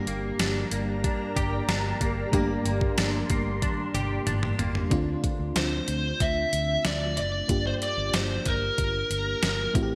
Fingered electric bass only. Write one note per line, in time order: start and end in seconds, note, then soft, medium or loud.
0.07 0.30 G1 medium
0.39 0.63 G1 loud
0.72 1.07 G1 medium
1.36 1.60 G1 medium
1.68 1.92 G1 loud
2.01 2.24 G1 medium
2.33 2.56 G1 medium
2.65 2.89 G1 medium
2.98 3.21 G1 loud
3.30 3.65 G1 medium
3.94 4.18 G1 loud
4.27 4.50 G1 loud
4.59 4.82 G1 loud
4.91 5.14 D2 medium
5.39 5.51 D2 loud
5.56 5.79 D2 medium
5.88 6.11 D2 medium
6.21 6.44 D2 medium
6.53 6.76 D2 medium
6.85 7.19 D2 loud
7.17 7.40 F#1 medium
7.49 7.72 G1 loud
7.97 8.09 G1 loud
8.13 8.37 G1 loud
8.46 8.69 G1 medium
8.78 9.02 G1 loud
9.10 9.34 G1 medium
9.43 9.66 G1 loud
9.75 9.95 A1 medium